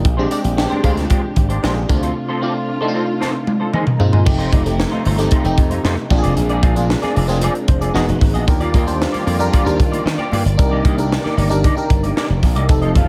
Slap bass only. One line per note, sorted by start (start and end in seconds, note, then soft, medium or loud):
0.05 0.25 A#1 loud
0.44 0.65 A#1 medium
0.84 1.05 D2 loud
1.36 1.57 G#1 medium
1.63 1.84 A#1 loud
1.90 2.10 D2 loud
4.27 4.47 F1 loud
4.53 4.83 F1 medium
5.06 5.26 G1 medium
5.45 5.55 F1 loud
5.58 5.78 F2 medium
5.84 5.95 F2 loud
6.10 6.21 A#1 medium
6.24 6.35 F1 medium
6.37 6.58 A#1 loud
6.63 6.94 A#1 loud
7.16 7.47 F1 medium
7.68 7.89 F1 medium
7.95 8.05 E1 loud
8.09 8.19 E1 medium
8.22 8.32 G#1 medium
8.35 8.45 A#1 medium
8.48 8.68 D#2 loud
8.74 9.05 D#2 loud
9.27 9.47 F2 medium
9.66 9.81 D#2 medium
9.80 10.00 D#3 medium
10.05 10.16 D#3 loud
10.32 10.42 G2 medium
10.45 10.56 G1 medium
10.59 10.79 C2 loud
10.85 11.16 C2 loud
11.37 11.68 G1 loud
11.90 12.11 G1 medium
12.30 12.40 F1 medium
12.43 12.56 A#1 medium
12.56 12.71 C2 medium
12.69 12.90 F1 loud
12.95 13.08 F1 loud